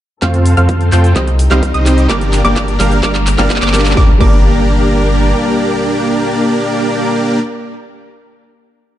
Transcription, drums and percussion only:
0.22 kick loud
0.22 clap soft
0.22 closed hi-hat medium
0.22 shaker soft
0.34 closed hi-hat soft
0.34 shaker soft
0.45 open hi-hat medium
0.45 shaker medium
0.57 closed hi-hat soft
0.57 shaker soft
0.69 kick loud
0.69 closed hi-hat medium
0.69 shaker soft
0.81 closed hi-hat soft
0.81 shaker soft
0.92 clap medium
0.92 open hi-hat medium
0.92 shaker medium
1.04 closed hi-hat soft
1.04 shaker soft
1.16 kick loud
1.16 clap medium
1.16 closed hi-hat medium
1.16 shaker soft
1.28 closed hi-hat soft
1.28 shaker soft
1.39 open hi-hat loud
1.39 shaker medium
1.51 clap medium
1.51 closed hi-hat soft
1.51 shaker soft
1.63 kick loud
1.63 closed hi-hat medium
1.63 shaker soft
1.74 closed hi-hat soft
1.74 shaker soft
1.86 clap medium
1.86 open hi-hat medium
1.86 shaker medium
1.98 closed hi-hat soft
1.98 shaker soft
2.10 kick loud
2.10 clap medium
2.10 closed hi-hat medium
2.10 shaker soft
2.21 closed hi-hat soft
2.21 shaker soft
2.33 clap medium
2.33 open hi-hat loud
2.33 shaker medium
2.45 closed hi-hat soft
2.45 shaker soft
2.56 kick loud
2.56 clap medium
2.56 closed hi-hat medium
2.56 shaker soft
2.68 closed hi-hat soft
2.68 shaker soft
2.80 clap medium
2.80 open hi-hat loud
2.80 shaker medium
2.92 closed hi-hat soft
2.92 shaker soft
3.03 kick loud
3.03 clap loud
3.03 closed hi-hat medium
3.03 shaker soft
3.15 clap medium
3.15 closed hi-hat soft
3.15 shaker soft
3.27 clap medium
3.27 open hi-hat loud
3.27 shaker medium
3.38 clap medium
3.38 closed hi-hat soft
3.38 shaker soft
3.50 kick loud
3.50 clap loud
3.50 closed hi-hat medium
3.50 shaker soft
3.56 clap medium
3.62 clap medium
3.62 closed hi-hat soft
3.62 shaker soft
3.68 clap medium
3.74 clap loud
3.74 open hi-hat loud
3.74 shaker medium
3.80 clap loud
3.85 clap loud
3.85 closed hi-hat soft
3.85 shaker soft
3.91 clap loud
3.97 kick loud
3.97 snare medium
4.21 kick loud
4.21 crash medium

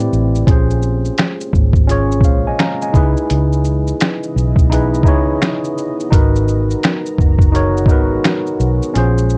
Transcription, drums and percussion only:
0.00 shaker soft
0.13 shaker soft
0.35 shaker soft
0.47 kick loud
0.47 closed hi-hat medium
0.47 shaker medium
0.70 shaker medium
0.82 shaker soft
1.05 shaker soft
1.18 finger snap medium
1.18 snare loud
1.18 closed hi-hat medium
1.18 shaker medium
1.41 shaker medium
1.53 kick medium
1.53 shaker soft
1.73 kick loud
1.73 shaker soft
1.89 closed hi-hat medium
1.89 shaker medium
2.12 shaker soft
2.21 kick medium
2.21 shaker medium
2.59 finger snap medium
2.59 snare loud
2.59 closed hi-hat medium
2.59 shaker medium
2.82 shaker soft
2.94 kick loud
2.94 shaker soft
3.17 shaker soft
3.30 closed hi-hat medium
3.30 shaker medium
3.53 shaker medium
3.65 shaker soft
3.87 shaker soft
4.01 finger snap loud
4.01 snare loud
4.01 closed hi-hat medium
4.01 shaker medium
4.23 shaker medium
4.38 shaker soft
4.56 kick loud
4.56 shaker medium
4.72 closed hi-hat medium
4.72 shaker medium
4.94 shaker soft
5.03 kick medium
5.03 shaker medium
5.42 finger snap medium
5.42 snare loud
5.42 closed hi-hat medium
5.42 shaker medium
5.64 shaker soft
5.78 shaker soft
6.00 shaker soft
6.12 kick loud
6.12 closed hi-hat medium
6.12 shaker medium
6.36 shaker medium
6.48 shaker soft
6.70 shaker soft
6.83 finger snap loud
6.83 snare loud
6.83 closed hi-hat medium
6.83 shaker medium
7.06 shaker medium
7.18 kick loud
7.18 shaker soft
7.38 kick medium
7.38 shaker medium
7.55 closed hi-hat medium
7.55 shaker medium
7.77 shaker soft
7.86 kick loud
7.86 shaker medium
8.24 finger snap medium
8.24 snare loud
8.24 closed hi-hat medium
8.24 shaker medium
8.47 shaker soft
8.60 shaker soft
8.82 shaker soft
8.95 closed hi-hat medium
8.95 shaker medium
9.18 shaker medium
9.29 shaker soft

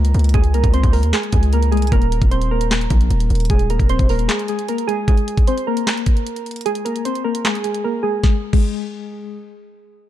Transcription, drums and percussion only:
0.05 closed hi-hat medium
0.14 closed hi-hat soft
0.19 closed hi-hat soft
0.24 closed hi-hat medium
0.29 closed hi-hat medium
0.34 kick loud
0.34 closed hi-hat medium
0.44 closed hi-hat medium
0.54 closed hi-hat medium
0.64 kick medium
0.64 closed hi-hat medium
0.74 closed hi-hat medium
0.83 kick loud
0.83 closed hi-hat medium
0.93 open hi-hat medium
1.03 closed hi-hat medium
1.13 snare loud
1.13 clap medium
1.13 closed hi-hat medium
1.23 closed hi-hat medium
1.32 kick medium
1.32 closed hi-hat medium
1.43 closed hi-hat medium
1.53 closed hi-hat medium
1.63 closed hi-hat medium
1.72 closed hi-hat soft
1.77 closed hi-hat soft
1.82 closed hi-hat medium
1.87 closed hi-hat medium
1.92 kick loud
1.92 closed hi-hat medium
2.02 closed hi-hat medium
2.12 closed hi-hat medium
2.22 kick loud
2.22 closed hi-hat medium
2.31 closed hi-hat medium
2.42 closed hi-hat medium
2.61 closed hi-hat medium
2.71 snare loud
2.71 clap medium
2.71 closed hi-hat medium
2.81 closed hi-hat medium
2.90 kick medium
2.90 closed hi-hat medium
3.01 closed hi-hat medium
3.10 closed hi-hat medium
3.20 closed hi-hat medium
3.30 closed hi-hat soft
3.35 closed hi-hat soft
3.40 closed hi-hat medium
3.45 closed hi-hat medium
3.50 kick loud
3.50 closed hi-hat medium
3.59 closed hi-hat medium
3.70 closed hi-hat medium
3.79 kick medium
3.79 closed hi-hat medium
3.89 closed hi-hat medium
3.99 kick loud
3.99 closed hi-hat medium
4.09 open hi-hat medium
4.19 closed hi-hat medium
4.29 snare loud
4.29 clap medium
4.29 closed hi-hat medium
4.39 closed hi-hat medium
4.48 closed hi-hat medium
4.59 closed hi-hat medium
4.68 closed hi-hat medium
4.78 closed hi-hat medium
4.89 closed hi-hat medium
5.08 kick loud
5.08 closed hi-hat medium
5.17 closed hi-hat medium
5.28 closed hi-hat medium
5.38 kick medium
5.38 closed hi-hat medium
5.47 closed hi-hat medium
5.58 closed hi-hat medium
5.77 closed hi-hat medium
5.87 snare loud
5.87 clap medium
5.87 closed hi-hat medium
5.97 closed hi-hat medium
6.06 kick medium
6.06 closed hi-hat medium
6.17 closed hi-hat medium
6.26 closed hi-hat medium
6.36 closed hi-hat medium
6.46 closed hi-hat soft
6.51 closed hi-hat soft
6.56 closed hi-hat medium
6.61 closed hi-hat medium
6.66 closed hi-hat medium
6.75 closed hi-hat medium
6.86 closed hi-hat medium
6.96 closed hi-hat medium
7.05 closed hi-hat medium
7.15 closed hi-hat medium
7.35 closed hi-hat medium
7.45 snare loud
7.45 clap medium
7.45 closed hi-hat medium
7.55 closed hi-hat medium
7.64 closed hi-hat medium
7.74 closed hi-hat medium
8.24 kick loud
8.24 snare medium
8.53 kick loud
8.53 crash medium

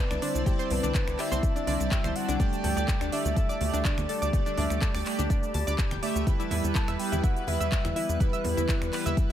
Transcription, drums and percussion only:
0.11 finger snap medium
0.11 closed hi-hat soft
0.11 high conga medium
0.11 shaker soft
0.22 open hi-hat loud
0.35 closed hi-hat soft
0.35 shaker medium
0.46 kick loud
0.46 closed hi-hat medium
0.46 high conga medium
0.46 shaker medium
0.59 closed hi-hat soft
0.59 shaker soft
0.70 open hi-hat loud
0.70 low conga medium
0.83 closed hi-hat soft
0.83 high conga medium
0.83 shaker medium
0.95 kick loud
0.95 clap loud
0.95 closed hi-hat medium
0.95 shaker medium
1.08 finger snap medium
1.08 closed hi-hat soft
1.08 shaker soft
1.19 clap medium
1.19 open hi-hat loud
1.32 closed hi-hat soft
1.32 high conga medium
1.32 shaker medium
1.43 kick loud
1.43 closed hi-hat medium
1.43 shaker medium
1.56 closed hi-hat soft
1.56 shaker soft
1.67 open hi-hat loud
1.67 high conga medium
1.80 closed hi-hat soft
1.80 shaker medium
1.91 kick loud
1.91 clap loud
1.91 closed hi-hat medium
1.91 shaker medium
2.04 finger snap medium
2.04 closed hi-hat soft
2.04 high conga loud
2.04 low conga medium
2.04 shaker soft
2.16 open hi-hat loud
2.29 closed hi-hat soft
2.29 shaker medium
2.40 kick loud
2.40 closed hi-hat medium
2.40 high conga medium
2.40 shaker medium
2.53 closed hi-hat soft
2.53 shaker soft
2.64 open hi-hat loud
2.64 low conga medium
2.77 closed hi-hat soft
2.77 high conga medium
2.77 shaker medium
2.88 kick loud
2.88 clap loud
2.88 closed hi-hat loud
2.88 shaker medium
3.01 finger snap medium
3.01 closed hi-hat soft
3.01 shaker soft
3.12 open hi-hat loud
3.25 closed hi-hat soft
3.25 high conga medium
3.25 shaker medium
3.36 kick loud
3.36 closed hi-hat medium
3.36 shaker medium
3.49 closed hi-hat soft
3.49 shaker soft
3.61 open hi-hat loud
3.61 high conga medium
3.74 closed hi-hat soft
3.74 shaker medium
3.85 kick loud
3.85 clap loud
3.85 closed hi-hat loud
3.85 shaker medium
3.98 finger snap medium
3.98 closed hi-hat soft
3.98 high conga medium
3.98 shaker soft
4.09 open hi-hat loud
4.22 closed hi-hat soft
4.22 shaker medium
4.33 kick loud
4.33 closed hi-hat loud
4.33 high conga loud
4.33 shaker medium
4.46 closed hi-hat soft
4.46 shaker soft
4.58 open hi-hat loud
4.58 low conga medium
4.70 finger snap medium
4.70 closed hi-hat soft
4.70 high conga medium
4.70 shaker medium
4.82 kick loud
4.82 clap loud
4.82 closed hi-hat loud
4.82 shaker medium
4.95 finger snap medium
4.95 open hi-hat medium
4.95 shaker soft
5.06 clap medium
5.06 open hi-hat loud
5.19 closed hi-hat soft
5.19 high conga loud
5.19 shaker medium
5.30 kick loud
5.30 closed hi-hat medium
5.30 shaker medium
5.43 closed hi-hat soft
5.43 shaker soft
5.54 open hi-hat loud
5.54 high conga medium
5.67 closed hi-hat soft
5.67 shaker medium
5.78 kick loud
5.78 clap loud
5.78 closed hi-hat medium
5.78 shaker medium
5.91 finger snap medium
5.91 closed hi-hat soft
5.91 high conga loud
5.91 low conga medium
5.91 shaker soft
6.03 open hi-hat loud
6.16 closed hi-hat soft
6.16 shaker medium
6.27 kick loud
6.27 closed hi-hat loud
6.27 high conga loud
6.27 shaker medium
6.40 closed hi-hat soft
6.40 shaker soft
6.50 open hi-hat loud
6.50 low conga medium
6.64 closed hi-hat soft
6.64 high conga medium
6.64 shaker medium
6.75 kick loud
6.75 clap loud
6.75 closed hi-hat loud
6.75 shaker medium
6.88 finger snap medium
6.88 closed hi-hat soft
6.88 shaker soft
6.99 open hi-hat loud
7.12 closed hi-hat soft
7.12 high conga loud
7.12 shaker medium
7.24 kick loud
7.24 closed hi-hat loud
7.24 shaker medium
7.37 closed hi-hat soft
7.37 shaker soft
7.47 open hi-hat loud
7.47 high conga medium
7.61 closed hi-hat soft
7.61 shaker medium
7.72 kick loud
7.72 clap loud
7.72 closed hi-hat medium
7.72 shaker medium
7.85 finger snap medium
7.85 closed hi-hat soft
7.85 high conga loud
7.85 shaker soft
7.96 open hi-hat loud
8.09 closed hi-hat soft
8.09 shaker medium
8.20 kick loud
8.20 closed hi-hat medium
8.20 high conga medium
8.20 shaker medium
8.33 closed hi-hat soft
8.33 shaker soft
8.44 open hi-hat loud
8.44 low conga medium
8.57 closed hi-hat soft
8.57 high conga medium
8.57 shaker medium
8.69 kick loud
8.69 clap loud
8.69 closed hi-hat loud
8.69 shaker medium
8.82 finger snap medium
8.82 closed hi-hat soft
8.82 shaker soft
8.93 clap medium
8.93 open hi-hat loud
9.06 closed hi-hat soft
9.06 high conga medium
9.06 shaker medium
9.17 kick loud
9.17 closed hi-hat medium
9.17 shaker medium

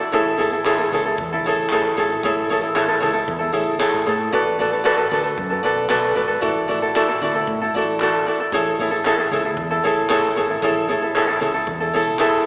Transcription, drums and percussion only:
0.14 kick loud
0.39 tambourine medium
0.65 clap loud
0.91 tambourine medium
1.18 kick loud
1.44 tambourine medium
1.69 clap loud
1.97 tambourine medium
2.23 kick loud
2.49 tambourine medium
2.75 clap loud
3.02 tambourine medium
3.28 kick loud
3.55 tambourine medium
3.80 clap loud
4.07 tambourine medium
4.33 kick loud
4.60 tambourine medium
4.86 clap loud
5.12 tambourine medium
5.38 kick loud
5.64 tambourine medium
5.89 clap loud
6.17 tambourine medium
6.43 kick loud
6.70 tambourine medium
6.96 clap loud
7.22 tambourine medium
7.47 kick loud
7.74 tambourine medium
8.00 clap loud
8.27 tambourine medium
8.52 kick loud
8.79 tambourine medium
9.05 clap loud
9.31 tambourine medium
9.57 kick loud
9.84 tambourine medium
10.09 clap loud
10.37 tambourine medium
10.62 kick loud
10.89 tambourine medium
11.16 clap loud
11.41 tambourine medium
11.67 kick loud
11.94 tambourine medium
12.19 clap loud

